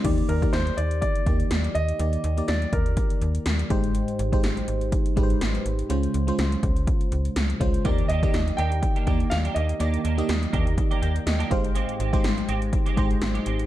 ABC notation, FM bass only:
X:1
M:4/4
L:1/16
Q:"Swing 16ths" 1/4=123
K:Eb
V:1 name="FM bass" clef=bass
E,,2 E,,2 E,,2 E,,3 z E,,2 E,,2 E,,2 | E,,2 E,,2 E,,2 E,,3 z E,,2 E,,2 A,,,2- | A,,,2 A,,,2 A,,,2 A,,,3 z A,,,2 A,,,2 A,,,2 | _D,,2 D,,2 D,,2 D,,3 z D,,2 D,,2 D,,2 |
E,,2 E,,2 E,,2 E,,3 z E,,2 E,,2 E,,2 | E,,2 E,,2 E,,2 E,,3 z E,,2 E,,2 A,,,2- | A,,,2 A,,,2 A,,,2 A,,,3 z A,,,2 A,,,2 A,,,2 |]